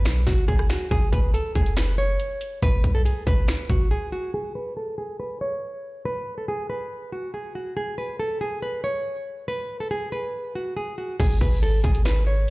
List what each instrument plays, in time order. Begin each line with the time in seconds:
Already playing: nylon-string guitar B4
0.05 808-style bass B1, finger snap, snare, closed hi-hat
0.27 808-style bass G#1, nylon-string guitar F#4, kick, snare, closed hi-hat
0.48 808-style bass G#1, nylon-string guitar G#4, kick, closed hi-hat
0.59 cross-stick
0.70 nylon-string guitar F#4, finger snap, snare, open hi-hat
0.91 808-style bass G#1, nylon-string guitar G#4, kick, closed hi-hat
1.13 808-style bass G#1, nylon-string guitar B4, kick, closed hi-hat
1.34 nylon-string guitar A4, closed hi-hat
1.55 808-style bass F#1, nylon-string guitar G#4, kick, closed hi-hat
1.66 closed hi-hat
1.77 nylon-string guitar B4, finger snap, snare, closed hi-hat
1.98 nylon-string guitar C#5
2.20 closed hi-hat
2.41 closed hi-hat
2.62 808-style bass G#1, nylon-string guitar B4, kick, closed hi-hat
2.84 808-style bass B1, kick, closed hi-hat
2.95 nylon-string guitar A4
3.05 nylon-string guitar G#4, closed hi-hat
3.27 808-style bass G#1, nylon-string guitar B4, kick, closed hi-hat
3.48 finger snap, snare, closed hi-hat
3.69 808-style bass G#1, nylon-string guitar F#4, kick, closed hi-hat
3.91 nylon-string guitar G#4
4.12 nylon-string guitar F#4
4.34 nylon-string guitar G#4
4.55 nylon-string guitar B4
4.77 nylon-string guitar A4
4.98 nylon-string guitar G#4
5.20 nylon-string guitar B4
5.41 nylon-string guitar C#5
6.05 nylon-string guitar B4
6.38 nylon-string guitar A4
6.48 nylon-string guitar G#4
6.70 nylon-string guitar B4
7.12 nylon-string guitar F#4
7.34 nylon-string guitar G#4
7.55 nylon-string guitar F#4
7.77 nylon-string guitar G#4
7.98 nylon-string guitar B4
8.20 nylon-string guitar A4
8.41 nylon-string guitar G#4
8.62 nylon-string guitar B4
8.84 nylon-string guitar C#5
9.48 nylon-string guitar B4
9.80 nylon-string guitar A4
9.91 nylon-string guitar G#4
10.12 nylon-string guitar B4
10.55 nylon-string guitar F#4
10.77 nylon-string guitar G#4
10.98 nylon-string guitar F#4
11.20 808-style bass G#1, nylon-string guitar G#4, kick, closed hi-hat, crash
11.41 808-style bass G#1, nylon-string guitar B4, kick, closed hi-hat
11.62 nylon-string guitar A4, closed hi-hat
11.84 808-style bass G#1, nylon-string guitar G#4, kick, closed hi-hat
11.95 closed hi-hat
12.05 nylon-string guitar B4, finger snap, snare, closed hi-hat
12.27 nylon-string guitar C#5